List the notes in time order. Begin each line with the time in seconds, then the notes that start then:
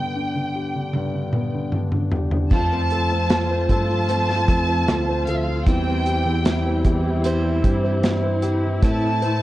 Already playing: G2 D3 B3 G5
0.16 D4
0.36 D3
0.56 G4
0.75 D3
0.93 G2, high tom
1.15 D3
1.33 B3, mid tom
1.55 D3
1.72 D4, mid tom
1.92 D3, mid tom
2.12 G4, floor tom
2.31 D3, floor tom
2.50 F2 F3 A3 C4 F4 C5 A5, kick, crash
2.73 C4
2.90 A4, closed hi-hat
3.12 C4
3.30 F4, snare, closed hi-hat
3.51 C5
3.69 G2 A4 A5, kick, closed hi-hat
3.90 F4
4.08 F3 A3 C4 F4 C5, closed hi-hat
4.29 C5, snare
4.48 F2 A4, kick, closed hi-hat
4.69 C4
4.87 D2 F4, snare, closed hi-hat
5.08 C5
5.26 D2 A4 F5, closed hi-hat
5.36 E5
5.42 F5
5.48 F4
5.66 E2 E3 G3 C4 E4 C5 G5, kick, closed hi-hat
5.87 C4
6.06 G4, closed hi-hat
6.26 E2 C4
6.45 E4, snare, closed hi-hat
6.66 C5
6.85 E2 G4, kick, closed hi-hat
7.06 E4
7.24 E3 G3 C4 E4 C5, closed hi-hat
7.45 E5
7.64 G2 G4, kick, closed hi-hat
7.84 C4
8.03 E4, snare, closed hi-hat
8.23 C5
8.42 C4 E4 G4 C5, closed hi-hat
8.62 E4
8.82 A2 E3 A3 C4 E4 B4 A5, kick, closed hi-hat
9.03 E4
9.22 A3 E4 B4 C5, closed hi-hat